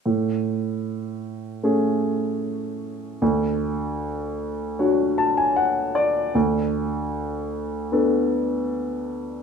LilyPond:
\new Staff \with { instrumentName = "Upright piano" } { \time 4/4 \key a \major \tempo 4 = 76 << { r1 | r2 r8 a''16 gis''16 fis''8 d''8 | r1 | } \\ { a,2 <a cis' gis'>2 | d,2 <d' fis' cis''>2 | d,2 <b d' a'>2 | } >> }